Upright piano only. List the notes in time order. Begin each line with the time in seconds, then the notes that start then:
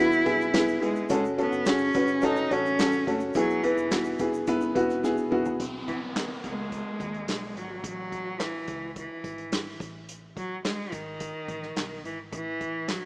Already playing: E3 B3 G#4 B4
0.00 E4 F#4
0.25 B3 E4 G#4
0.53 B3 E4 G#4
0.81 B3 E4 G#4
1.10 C#4 F#4 A4
1.38 C#4 F#4 A4
1.66 C#4 F#4 G#4
1.95 C#4 F#4 B4
2.22 C#4 F#4 A4
2.50 C#4 F#4 A4
2.79 C#4 F#4 A4
3.07 C#4 F#4 A4
3.35 E3 B3 E4 G#4
3.63 B3 E4 B4
3.92 B3 E4 F#4
4.19 B3 E4 G#4
4.47 B3 E4 B4
4.75 B3 E4 F#4
5.03 B3 E4 G#4
5.31 B3 E4 F#4